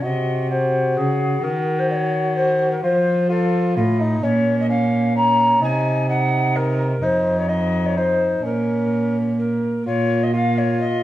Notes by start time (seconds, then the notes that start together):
0.03 C3 F#4 D#5
0.50 F#4 C5
0.97 C#3 G#4
1.43 D#3 F#4 A#4
1.79 C5
1.90 D5
1.94 C#5
2.36 C5
2.71 A#4
2.83 F3 F4 C5
3.29 F4 A4
3.76 A2 F4 A4
4.00 D#4
4.23 A#2 C#4 C#5
4.60 D#5
4.70 C#4 F5
5.16 C#4 A#5
5.62 C3 D#4 G#5
6.09 D#4 F#5
6.56 A#4
7.02 F2 D#4 C5
7.38 C#5
7.49 D#4 D#5
7.86 C#5
7.97 D#4 C5
8.43 A#2 C#4 A#4
9.39 A#4
9.86 A#2 F4 C#5
10.23 D#5
10.34 F4 F5
10.58 C#5
10.80 D#5